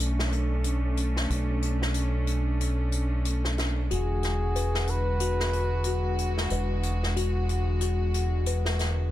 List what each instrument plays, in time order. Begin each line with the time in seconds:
Already playing: fingered electric bass B1, string section A3 C#4 D4
0.00 closed hi-hat
0.19 snare
0.32 closed hi-hat
0.64 closed hi-hat
0.97 closed hi-hat
1.17 snare
1.30 fingered electric bass B1, closed hi-hat
1.63 closed hi-hat
1.82 snare
1.94 closed hi-hat
2.27 closed hi-hat
2.61 closed hi-hat
2.92 closed hi-hat
3.25 closed hi-hat
3.45 snare
3.58 snare, closed hi-hat
3.91 fingered electric bass E1, string section D3 G#3 F#4, music box F#4, muted trumpet G#4, closed hi-hat
4.23 snare, closed hi-hat
4.56 music box B4, closed hi-hat
4.75 snare
4.87 muted trumpet B4, closed hi-hat
5.20 music box F#4, closed hi-hat
5.40 snare
5.53 closed hi-hat
5.84 music box F#4, closed hi-hat
6.19 closed hi-hat
6.38 snare
6.50 fingered electric bass E1, music box B4, closed hi-hat
6.83 closed hi-hat
7.03 snare
7.17 music box F#4, closed hi-hat
7.49 closed hi-hat
7.81 music box F#4, closed hi-hat
8.14 closed hi-hat
8.46 music box B4, closed hi-hat
8.65 snare
8.79 snare, closed hi-hat